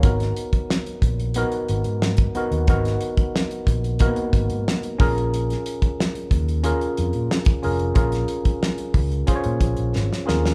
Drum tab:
HH |xxxx-xxxxxxx-xxx|xxxx-xxxxxxx-xox|xxxx-xxxxxxx-xox|xxxx-xoxxxxx----|
SD |-o--o-------o---|-o--o-------o---|-o--o-------o---|-o--o-------oooo|
BD |o--o--o------o--|o--o--o-o-o---o-|---o--o------o--|o--o--o-o-o-----|